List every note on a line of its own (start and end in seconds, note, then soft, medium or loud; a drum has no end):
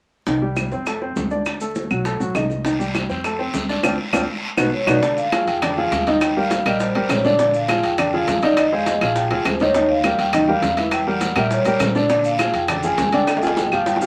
0.27 0.68 C2 medium
0.27 0.40 D#3 medium
0.27 0.40 D#4 medium
0.27 high bongo medium
0.27 high conga soft
0.27 maracas medium
0.41 0.66 G3 medium
0.41 0.66 G4 medium
0.41 high conga soft
0.56 high bongo medium
0.56 high conga medium
0.56 claves medium
0.56 maracas medium
0.71 1.13 F2 medium
0.71 0.84 C4 medium
0.71 0.84 C5 medium
0.71 high bongo soft
0.71 high conga soft
0.71 maracas soft
0.86 0.99 A3 medium
0.86 0.99 A4 medium
0.86 high bongo medium
0.86 high conga soft
0.86 claves medium
0.86 maracas medium
1.01 1.26 C4 medium
1.01 1.26 C5 medium
1.01 high bongo soft
1.01 high conga soft
1.16 1.85 D2 medium
1.16 high bongo soft
1.16 low bongo medium
1.16 high conga medium
1.16 maracas medium
1.31 1.55 D4 medium
1.31 1.56 D5 medium
1.31 high bongo soft
1.31 high conga medium
1.31 maracas soft
1.45 high bongo medium
1.45 high conga soft
1.45 claves medium
1.45 maracas medium
1.61 1.85 A3 medium
1.61 1.86 A4 medium
1.61 high conga soft
1.61 maracas medium
1.75 high bongo medium
1.75 high conga medium
1.75 maracas medium
1.90 2.18 B1 medium
1.90 2.03 F#3 medium
1.90 2.03 F#4 medium
1.90 high bongo soft
1.90 high conga soft
1.90 claves medium
1.90 maracas soft
2.05 2.18 A3 medium
2.05 2.18 A4 medium
2.05 high bongo medium
2.05 high conga soft
2.05 maracas medium
2.20 2.34 A1 medium
2.20 2.32 F#3 medium
2.20 2.33 F#4 medium
2.20 high bongo soft
2.20 high conga soft
2.20 maracas medium
2.35 3.04 C2 medium
2.35 2.59 D#4 medium
2.35 2.60 D#5 medium
2.35 high bongo soft
2.35 low bongo medium
2.35 high conga medium
2.35 claves medium
2.35 maracas medium
2.50 high bongo soft
2.50 high conga medium
2.50 maracas soft
2.65 2.77 D#3 medium
2.65 2.77 D#4 medium
2.65 high bongo medium
2.65 high conga soft
2.65 long guiro medium
2.65 maracas medium
2.79 3.04 G3 medium
2.79 3.04 G4 medium
2.79 high conga soft
2.79 maracas medium
2.95 high bongo medium
2.95 high conga medium
2.95 short guiro medium
2.95 claves medium
2.95 maracas medium
3.09 3.51 F2 medium
3.09 3.22 C4 medium
3.09 3.22 C5 medium
3.09 high bongo soft
3.09 high conga soft
3.09 short guiro medium
3.09 maracas soft
3.24 3.37 A3 medium
3.24 3.37 A4 medium
3.24 high bongo medium
3.24 high conga soft
3.24 long guiro medium
3.24 claves medium
3.24 maracas medium
3.39 3.64 C4 medium
3.39 3.64 C5 medium
3.39 high bongo soft
3.39 high conga soft
3.54 3.82 D2 medium
3.54 high bongo soft
3.54 low bongo medium
3.54 high conga medium
3.54 short guiro medium
3.54 maracas medium
3.69 3.81 D4 medium
3.69 3.81 D5 medium
3.69 high bongo soft
3.69 high conga medium
3.69 short guiro medium
3.69 maracas soft
3.83 3.95 D2 medium
3.83 3.94 C4 medium
3.83 3.94 D4 medium
3.83 3.93 F4 medium
3.83 high bongo medium
3.83 high conga medium
3.83 long guiro loud
3.83 claves medium
3.83 maracas medium
4.13 4.24 D2 medium
4.13 4.23 C4 medium
4.13 4.23 D4 medium
4.13 4.23 F4 medium
4.13 high bongo medium
4.13 high conga medium
4.13 long guiro medium
4.13 claves loud
4.13 maracas medium
4.57 4.69 B1 medium
4.57 4.67 B3 medium
4.57 4.67 D#4 medium
4.57 4.67 F#4 medium
4.57 high bongo medium
4.57 high conga medium
4.57 long guiro medium
4.57 claves medium
4.57 maracas medium
4.74 4.87 C#5 medium
4.87 4.98 B1 medium
4.87 4.97 B3 medium
4.87 4.97 D#4 loud
4.87 4.97 F#4 medium
4.87 5.16 D5 medium
4.87 high bongo medium
4.87 high conga medium
4.87 long guiro medium
4.87 claves loud
4.87 maracas medium
5.02 5.26 D3 medium
5.02 5.27 D4 medium
5.02 5.27 D5 medium
5.02 high bongo medium
5.02 high conga soft
5.02 long guiro medium
5.02 maracas medium
5.17 5.48 F5 medium
5.17 high conga soft
5.17 maracas medium
5.32 5.57 F3 medium
5.32 5.57 F4 medium
5.32 5.57 G#4 medium
5.32 high bongo medium
5.32 high conga medium
5.32 high timbale medium
5.32 short guiro medium
5.32 claves medium
5.32 maracas medium
5.47 5.88 F2 loud
5.47 5.78 G5 medium
5.47 high bongo soft
5.47 high conga soft
5.47 high timbale medium
5.47 short guiro medium
5.47 maracas soft
5.62 5.75 D3 medium
5.62 5.75 D4 medium
5.62 5.75 D5 medium
5.62 high bongo medium
5.62 high conga soft
5.62 low conga medium
5.62 high timbale medium
5.62 long guiro medium
5.62 claves medium
5.62 maracas medium
5.77 6.02 F3 medium
5.77 6.02 F4 medium
5.77 6.02 G#4 medium
5.77 6.05 F5 medium
5.77 high bongo soft
5.77 high conga soft
5.91 6.60 D#2 medium
5.91 high bongo soft
5.91 low bongo medium
5.91 high conga medium
5.91 high timbale medium
5.91 short guiro medium
5.91 maracas medium
6.06 6.31 D#3 medium
6.06 6.31 D#4 medium
6.06 6.31 D#5 medium
6.06 high bongo soft
6.06 high conga medium
6.06 high timbale medium
6.06 short guiro medium
6.06 maracas soft
6.21 6.37 G5 medium
6.21 high bongo medium
6.21 high conga soft
6.21 high timbale medium
6.21 long guiro medium
6.21 claves medium
6.21 maracas medium
6.36 6.61 G3 medium
6.36 6.61 G4 medium
6.36 6.61 A#4 medium
6.36 6.67 F5 medium
6.36 high conga soft
6.50 high bongo medium
6.50 high conga medium
6.50 high timbale medium
6.50 short guiro medium
6.50 maracas medium
6.65 6.93 A#1 medium
6.65 6.90 G3 medium
6.65 6.90 G4 medium
6.65 6.90 A#4 medium
6.65 6.80 D#5 medium
6.65 high bongo soft
6.65 high timbale medium
6.65 short guiro medium
6.65 claves medium
6.65 maracas soft
6.80 7.05 C5 medium
6.80 high bongo medium
6.80 high conga soft
6.80 long guiro medium
6.80 maracas medium
6.95 7.09 G#1 medium
6.95 7.19 G3 medium
6.95 7.20 G4 medium
6.95 7.20 A#4 medium
6.95 high bongo soft
6.95 high conga soft
6.95 high timbale medium
7.07 7.78 A#1 medium
7.07 7.10 C5 medium
7.07 high bongo soft
7.07 low bongo medium
7.07 high conga medium
7.07 high timbale medium
7.07 short guiro medium
7.07 claves medium
7.07 maracas medium
7.11 7.24 C#5 medium
7.24 7.37 D3 medium
7.24 7.37 D4 medium
7.24 7.37 D5 loud
7.24 7.53 D5 medium
7.24 high bongo soft
7.24 high conga medium
7.24 short guiro medium
7.24 maracas soft
7.39 7.64 D3 medium
7.39 7.64 D4 medium
7.39 7.64 D5 medium
7.39 high bongo medium
7.39 high conga soft
7.39 long guiro medium
7.39 maracas medium
7.54 7.85 F5 medium
7.54 high conga soft
7.54 maracas medium
7.68 7.93 F3 medium
7.68 7.93 F4 medium
7.68 7.93 G#4 medium
7.68 high bongo medium
7.68 high conga medium
7.68 high timbale medium
7.68 short guiro medium
7.68 claves medium
7.68 maracas medium
7.83 8.24 F2 medium
7.83 8.14 G5 medium
7.83 high bongo soft
7.83 high conga soft
7.83 high timbale medium
7.83 short guiro medium
7.83 maracas soft
7.98 8.10 D3 medium
7.98 8.10 D4 medium
7.98 8.11 D5 medium
7.98 high bongo medium
7.98 high conga soft
7.98 low conga medium
7.98 high timbale medium
7.98 long guiro medium
7.98 claves medium
7.98 maracas medium
8.13 8.37 F3 medium
8.13 8.37 F4 medium
8.13 8.38 G#4 medium
8.13 8.41 F5 medium
8.13 high bongo soft
8.13 high conga soft
8.13 low conga medium
8.27 8.95 F2 medium
8.27 high bongo soft
8.27 low bongo medium
8.27 high conga medium
8.27 high timbale medium
8.27 low timbale medium
8.27 short guiro medium
8.27 maracas medium
8.42 8.67 D#3 medium
8.42 8.67 D#4 medium
8.42 8.57 D5 medium
8.42 8.67 D#5 medium
8.42 high bongo soft
8.42 high timbale medium
8.42 short guiro medium
8.42 maracas soft
8.57 8.71 D#5 loud
8.57 high bongo medium
8.57 high conga soft
8.57 high timbale medium
8.57 long guiro medium
8.57 claves medium
8.57 maracas medium
8.72 8.96 G#3 medium
8.72 8.96 G#4 medium
8.72 8.96 C5 medium
8.72 8.88 F5 medium
8.72 high conga soft
8.86 9.02 D#5 medium
8.86 high bongo medium
8.86 high conga medium
8.86 high timbale medium
8.86 short guiro medium
8.86 maracas medium
9.01 9.29 A#1 medium
9.01 9.26 F3 medium
9.01 9.26 F4 medium
9.01 9.26 G#4 medium
9.01 9.09 F5 medium
9.01 high bongo soft
9.01 high conga soft
9.01 high timbale medium
9.01 short guiro medium
9.01 claves medium
9.01 maracas soft
9.16 9.44 G5 medium
9.16 high bongo medium
9.16 high conga soft
9.16 long guiro medium
9.16 maracas medium
9.30 9.44 D2 medium
9.30 9.55 F3 medium
9.30 9.55 F4 medium
9.30 9.55 G#4 medium
9.30 high bongo soft
9.30 high conga soft
9.30 high timbale medium
9.45 10.13 D#2 medium
9.45 9.61 C5 medium
9.45 high bongo soft
9.45 low bongo medium
9.45 high conga medium
9.45 high timbale medium
9.45 short guiro medium
9.45 claves medium
9.45 maracas medium
9.60 9.73 D#3 medium
9.60 9.73 D#4 medium
9.60 9.91 C#5 medium
9.60 9.73 D#5 medium
9.60 high bongo soft
9.60 high conga medium
9.60 short guiro medium
9.60 maracas soft
9.74 9.99 D#3 medium
9.74 9.99 D#4 medium
9.74 10.00 D#5 medium
9.74 high bongo medium
9.74 high conga soft
9.74 long guiro medium
9.74 maracas medium
9.89 10.20 F5 loud
9.89 high conga soft
10.04 10.28 G3 medium
10.04 10.29 G4 medium
10.04 10.29 A#4 medium
10.04 high bongo medium
10.04 high conga medium
10.04 high timbale medium
10.04 short guiro medium
10.04 claves medium
10.04 maracas medium
10.18 10.59 D#2 medium
10.18 10.49 G5 medium
10.18 high bongo soft
10.18 high conga soft
10.18 high timbale medium
10.18 short guiro medium
10.18 maracas soft
10.33 10.45 D#3 medium
10.33 10.46 D#4 medium
10.33 10.46 D#5 medium
10.33 high bongo medium
10.33 high conga soft
10.33 low conga medium
10.33 high timbale medium
10.33 long guiro medium
10.33 claves medium
10.33 maracas medium
10.48 10.72 G3 medium
10.48 10.72 G4 medium
10.48 10.73 A#4 medium
10.48 10.76 F5 medium
10.48 high bongo soft
10.48 high conga soft
10.48 low conga medium
10.62 11.30 E2 medium
10.62 high bongo soft
10.62 low bongo medium
10.62 high conga medium
10.62 high timbale medium
10.62 low timbale medium
10.62 short guiro medium
10.62 maracas medium
10.77 11.02 E3 medium
10.77 11.02 E4 loud
10.77 11.02 E5 medium
10.77 high bongo soft
10.77 high conga medium
10.77 high timbale medium
10.77 short guiro medium
10.77 maracas soft
10.91 11.06 G5 loud
10.91 high bongo medium
10.91 high conga soft
10.91 high timbale medium
10.91 long guiro medium
10.91 claves medium
10.91 maracas medium
11.07 11.31 G3 medium
11.07 11.31 G4 medium
11.07 11.31 A#4 medium
11.07 11.35 F#5 medium
11.21 high bongo medium
11.21 high conga medium
11.21 high timbale medium
11.21 short guiro medium
11.21 maracas medium
11.36 11.63 A#2 medium
11.36 11.60 G3 medium
11.36 11.60 G4 medium
11.36 11.61 A#4 medium
11.36 11.51 E5 medium
11.36 high bongo soft
11.36 high conga soft
11.36 high timbale medium
11.36 short guiro medium
11.36 claves medium
11.36 maracas soft
11.51 11.79 C#5 medium
11.51 high bongo medium
11.51 high conga soft
11.51 long guiro medium
11.51 maracas medium
11.65 11.79 A2 medium
11.65 11.90 G3 medium
11.65 11.90 G4 medium
11.65 11.90 A#4 medium
11.65 high bongo soft
11.65 high conga soft
11.65 high timbale medium
11.65 maracas medium
11.80 12.48 A#2 medium
11.80 11.88 C5 medium
11.80 high bongo soft
11.80 low bongo medium
11.80 high conga medium
11.80 high timbale medium
11.80 low timbale medium
11.80 short guiro medium
11.80 claves medium
11.80 maracas medium
11.95 12.07 D3 medium
11.95 12.07 D4 medium
11.95 12.07 D5 medium
11.95 12.26 D5 medium
11.95 high bongo soft
11.95 high conga medium
11.95 short guiro medium
11.95 maracas soft
12.09 12.34 D3 medium
12.09 12.34 D4 medium
12.09 12.34 D5 medium
12.09 high bongo medium
12.09 high conga soft
12.09 long guiro medium
12.09 maracas medium
12.24 12.55 F5 loud
12.24 high conga soft
12.24 maracas medium
12.39 12.64 F3 medium
12.39 12.64 F4 medium
12.39 12.64 G#4 medium
12.39 high bongo medium
12.39 high conga medium
12.39 high timbale medium
12.39 short guiro medium
12.39 claves medium
12.39 maracas medium
12.54 12.95 F2 medium
12.54 12.85 G5 medium
12.54 high bongo soft
12.54 high conga soft
12.54 high timbale medium
12.54 short guiro medium
12.54 maracas soft
12.68 12.81 D3 medium
12.68 12.81 D4 medium
12.68 12.81 D5 medium
12.68 high bongo medium
12.68 high conga soft
12.68 low conga medium
12.68 high timbale medium
12.68 long guiro medium
12.68 claves medium
12.68 maracas medium
12.83 13.08 F3 medium
12.83 13.08 F4 medium
12.83 13.08 G#4 medium
12.83 13.14 G#5 loud
12.83 high bongo soft
12.83 high conga soft
12.83 low conga medium
12.83 maracas medium
12.98 13.66 D2 medium
12.98 high bongo soft
12.98 low bongo medium
12.98 high conga medium
12.98 high timbale medium
12.98 short guiro medium
12.98 maracas medium
13.12 13.37 D3 medium
13.12 13.37 D4 medium
13.12 13.37 D5 loud
13.12 13.44 G5 loud
13.12 high bongo soft
13.12 high conga medium
13.12 high timbale medium
13.12 short guiro medium
13.12 maracas soft
13.27 high bongo medium
13.27 high conga soft
13.27 high timbale loud
13.27 long guiro medium
13.27 claves medium
13.27 maracas medium
13.37 high timbale loud
13.42 13.66 F3 medium
13.42 13.67 F4 medium
13.42 13.67 G#4 medium
13.42 13.56 G#5 loud
13.42 maracas medium
13.47 high timbale loud
13.57 13.72 G5 medium
13.57 high bongo medium
13.57 high conga medium
13.57 high timbale medium
13.57 short guiro medium
13.57 maracas medium
13.67 high timbale medium
13.71 14.06 G1 medium
13.71 13.96 F3 medium
13.71 13.96 F4 medium
13.71 13.96 G4 medium
13.71 13.86 F5 medium
13.71 high bongo soft
13.71 short guiro medium
13.71 claves medium
13.71 maracas soft
13.86 14.06 G5 loud
13.86 high bongo medium
13.86 high conga soft
13.86 low timbale medium
13.86 long guiro medium
13.86 maracas medium
13.96 low timbale loud
14.01 14.06 F3 medium
14.01 14.06 F4 medium
14.01 14.06 G4 medium
14.01 high bongo soft
14.01 high conga soft
14.01 maracas medium